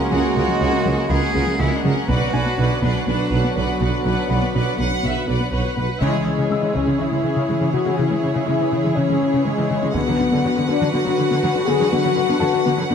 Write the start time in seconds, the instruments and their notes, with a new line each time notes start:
Already playing: trombone section C#3 G#3, analog synth pad G#3 A#3 C#4 F#4, french horn section A#3 F#4, cello C#4, felt piano A#4 A#5 D6, violin section F#5
0.11 double bass section C#2, tuba C#2, cello section C#3, synth arpeggio sound F#3, cello F#4, viola section G#4, violin section A#4 F#5
0.36 double bass section C#2, tuba C#2, cello section C#3, synth arpeggio sound A#3, viola section G#4, violin section A#4 F#5
0.48 synth arpeggio sound F#3
0.60 double bass section C#2, tuba C#2, cello section C#3, synth arpeggio sound A#3, viola section G#4, violin section A#4 F#5
0.73 synth arpeggio sound C#4
0.85 tuba C#2, double bass section C#2, cello section C#3, synth arpeggio sound F#3, viola section G#4, violin section A#4 F#5
0.98 synth arpeggio sound A#3
1.09 double bass section C#2, tuba C#2, cello section C#3, synth arpeggio sound F#3, viola section G#4, cello G#4, violin section A#4 F#5, felt piano B5
1.22 synth arpeggio sound C#4
1.34 double bass section C#2, tuba C#2, cello section C#3, synth arpeggio sound C#4, viola section G#4, violin section A#4 F#5
1.47 synth arpeggio sound F#3
1.59 double bass section C#2, tuba C#2, cello section C#3, cello E4, synth arpeggio sound F#4, viola section G#4, violin section A#4 F#5
1.72 synth arpeggio sound C#4
1.76 cello D4
1.83 tuba C#2, double bass section C#2, cello section C#3, synth arpeggio sound F#3, viola section G#4, violin section A#4 F#5
1.93 cello C#4, synth arpeggio sound C#4
2.08 tuba B1, double bass section B1, cello section B2, trombone section D3 F#3, analog synth pad F#3 D4 F#4 B4, french horn section B3 F#4, synth arpeggio sound B3, cello F#4, viola section B4, violin section D5 F#5, taiko
2.33 tuba B1, double bass section B1, cello section B2, synth arpeggio sound D4, viola section B4, violin section D5 F#5, felt piano G#5
2.46 synth arpeggio sound B3
2.57 double bass section B1, tuba B1, cello section B2, synth arpeggio sound D4, viola section B4, violin section D5 F#5
2.70 synth arpeggio sound F#4
2.82 double bass section B1, tuba B1, cello section B2, synth arpeggio sound B3, cello D4, viola section B4, violin section D5 F#5, taiko
2.95 synth arpeggio sound D4
3.07 double bass section B1, tuba B1, cello section B2, synth arpeggio sound B3, cello D4, viola section B4, violin section D5 F#5
3.20 synth arpeggio sound F#4
3.31 tuba B1, double bass section B1, cello section B2, synth arpeggio sound F#4, viola section B4, violin section D5 F#5
3.44 synth arpeggio sound B3
3.55 tuba B1, double bass section B1, cello section B2, cello B3, viola section B4, synth arpeggio sound B4, violin section D5 F#5
3.69 synth arpeggio sound F#4
3.81 tuba B1, double bass section B1, cello section B2, synth arpeggio sound B3, viola section B4, violin section D5 F#5
3.94 synth arpeggio sound F#4
4.05 tuba B1, double bass section B1, cello section B2, cello B3, synth arpeggio sound B3, viola section B4, violin section D5 F#5
4.29 tuba B1, double bass section B1, cello section B2, synth arpeggio sound D4, viola section B4, violin section D5 F#5, felt piano B5
4.42 synth arpeggio sound B3
4.54 tuba B1, double bass section B1, cello section B2, synth arpeggio sound D4, viola section B4, violin section D5 F#5
4.67 synth arpeggio sound F#4
4.78 double bass section B1, tuba B1, cello section B2, synth arpeggio sound B3, viola section B4, violin section F#5
4.91 synth arpeggio sound D4
5.03 double bass section B1, tuba B1, cello section B2, synth arpeggio sound B3, viola section B4, violin section E5 F#5
5.16 synth arpeggio sound F#4
5.27 tuba B1, double bass section B1, cello section B2, synth arpeggio sound F#4, viola section B4, violin section D5 F#5
5.40 synth arpeggio sound B3
5.52 double bass section B1, tuba B1, cello section B2, viola section B4, synth arpeggio sound B4, violin section C#5 F#5
5.65 synth arpeggio sound F#4
5.76 double bass section B1, tuba B1, cello section B2, synth arpeggio sound B3, viola section B4, violin section B4 F#5
5.89 synth arpeggio sound F#4
6.01 cello section C#3, synth arpeggio sound C#3, viola section C#3 E4, analog synth pad E3 C#4 G#4 C#5, french horn section G#3, violin section G#4 C#5, taiko
6.14 cello section C#3, viola section G#3, synth arpeggio sound G#3
6.26 cello section C#3, synth arpeggio sound E3, viola section E3
6.38 cello section C#3, synth arpeggio sound C#3, viola section C#3
6.50 cello section C#3, synth arpeggio sound G#3, viola section G#3, felt piano E6
6.62 cello section C#3, viola section E3, synth arpeggio sound E3
6.74 cello section C#3, synth arpeggio sound C#3, viola section C#3, french horn section C#4, taiko
6.86 cello section C#3, synth arpeggio sound G#3, viola section G#3
6.99 cello section C#3, viola section C#3, synth arpeggio sound C#3, french horn section E4
7.11 cello section C#3, synth arpeggio sound G#3, viola section G#3
7.24 cello section C#3, synth arpeggio sound E3, viola section E3
7.36 cello section C#3, synth arpeggio sound C#3, viola section C#3
7.49 cello section C#3, synth arpeggio sound G#3, viola section G#3
7.60 cello section C#3, viola section E3, synth arpeggio sound E3
7.72 viola section C#3, cello section C#3, synth arpeggio sound C#3, french horn section F#4
7.85 cello section C#3, viola section G#3, synth arpeggio sound C#4
7.96 viola section C#3, cello section C#3, synth arpeggio sound C#3, french horn section E4
8.10 cello section C#3, viola section G#3, synth arpeggio sound G#3
8.21 cello section C#3, viola section E3, synth arpeggio sound E3
8.34 viola section C#3, cello section C#3, synth arpeggio sound C#3
8.46 cello section C#3, viola section G#3, synth arpeggio sound G#3, french horn section E4
8.59 cello section C#3, viola section E3, synth arpeggio sound E3
8.72 viola section C#3, synth arpeggio sound C#3, cello section C#3
8.84 cello section C#3, viola section G#3, synth arpeggio sound G#3
8.95 viola section C#3, cello section C#3, synth arpeggio sound C#3, french horn section C#4
9.08 cello section C#3, viola section G#3, synth arpeggio sound G#3
9.20 cello section C#3, viola section E3, synth arpeggio sound E3
9.33 viola section C#3, synth arpeggio sound C#3, cello section C#3
9.45 cello section C#3, viola section G#3, french horn section G#3, synth arpeggio sound G#3
9.57 cello section C#3, viola section E3, synth arpeggio sound E3
9.70 viola section C#3, synth arpeggio sound C#3, cello section C#3
9.81 cello section C#3, viola section G#3, synth arpeggio sound C#4
9.94 viola section D3 F#4, cello section D3, analog synth pad F#3 D4 F#4 B4, french horn section B3, synth arpeggio sound B3, violin section B4 F#5, taiko
10.06 cello section D3, viola section F#3, synth arpeggio sound F#4
10.19 viola section D3, cello section D3, synth arpeggio sound D4
10.31 viola section D3, cello section D3, synth arpeggio sound B3
10.44 cello section D3, viola section F#3, synth arpeggio sound F#4
10.56 viola section D3, cello section D3, synth arpeggio sound D4
10.68 viola section D3, cello section D3, synth arpeggio sound B3, french horn section D4
10.81 cello section D3, viola section F#3, synth arpeggio sound F#4
10.92 viola section D3, cello section D3, synth arpeggio sound B3, french horn section F#4
11.05 cello section D3, viola section F#3, synth arpeggio sound F#4
11.17 viola section D3, cello section D3, synth arpeggio sound D4
11.30 viola section D3, cello section D3, synth arpeggio sound B3
11.43 cello section D3, viola section F#3, synth arpeggio sound F#4
11.54 viola section D3, cello section D3, synth arpeggio sound D4
11.66 viola section D3, cello section D3, synth arpeggio sound B3, french horn section G#4
11.79 cello section D3, viola section F#3, synth arpeggio sound B4
11.91 viola section D3, cello section D3, synth arpeggio sound B3, french horn section F#4
12.02 cello section D3, viola section F#3, synth arpeggio sound F#4
12.15 viola section D3, cello section D3, synth arpeggio sound D4
12.27 viola section D3, cello section D3, synth arpeggio sound B3
12.39 cello section D3, viola section F#3, french horn section F#4, synth arpeggio sound F#4, felt piano A4 A5
12.52 viola section D3, cello section D3, synth arpeggio sound D4
12.64 viola section D3, cello section D3, synth arpeggio sound B3
12.77 cello section D3, viola section F#3, synth arpeggio sound F#4
12.89 viola section D3, cello section D3, synth arpeggio sound B3, french horn section D4